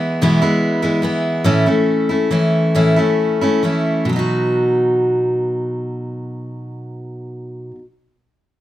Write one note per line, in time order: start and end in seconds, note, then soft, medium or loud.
0.00 0.21 E3 medium
0.00 0.22 G#3 soft
0.00 0.22 B3 medium
0.00 0.22 E4 medium
0.21 0.42 E2 medium
0.21 0.42 B2 medium
0.21 0.43 E3 medium
0.21 0.41 G#3 medium
0.21 0.41 B3 medium
0.21 0.40 E4 medium
0.41 0.83 E3 soft
0.41 0.82 G#3 soft
0.41 0.82 B3 soft
0.41 0.81 E4 soft
0.82 1.01 E3 soft
0.82 1.02 G#3 soft
0.82 1.03 B3 medium
0.82 1.03 E4 medium
1.02 1.43 E3 medium
1.02 1.45 G#3 medium
1.02 1.45 B3 medium
1.02 1.45 E4 medium
1.44 1.66 A2 medium
1.44 1.66 E3 medium
1.44 1.67 A3 medium
1.44 1.66 C#4 medium
1.44 1.65 E4 medium
1.66 2.10 A3 soft
1.66 2.09 C#4 soft
1.66 2.08 E4 soft
2.09 2.30 A3 soft
2.09 2.30 C#4 soft
2.09 2.31 E4 soft
2.31 2.74 E3 soft
2.31 2.74 A3 medium
2.31 2.75 C#4 medium
2.31 2.75 E4 medium
2.75 2.97 A2 medium
2.75 2.97 E3 medium
2.75 2.97 A3 medium
2.75 2.96 C#4 medium
2.75 2.95 E4 medium
2.96 3.42 A3 soft
2.96 3.41 C#4 soft
2.96 3.40 E4 medium
3.41 3.62 A3 soft
3.41 3.63 C#4 soft
3.41 3.64 E4 soft
3.63 4.09 E3 soft
3.63 4.09 A3 soft
3.63 4.10 C#4 medium
3.63 4.10 E4 medium
4.05 7.71 B2 medium
4.09 7.75 F#3 medium
4.09 7.78 B3 medium
4.16 7.81 D#4 medium
4.16 7.84 F#4 medium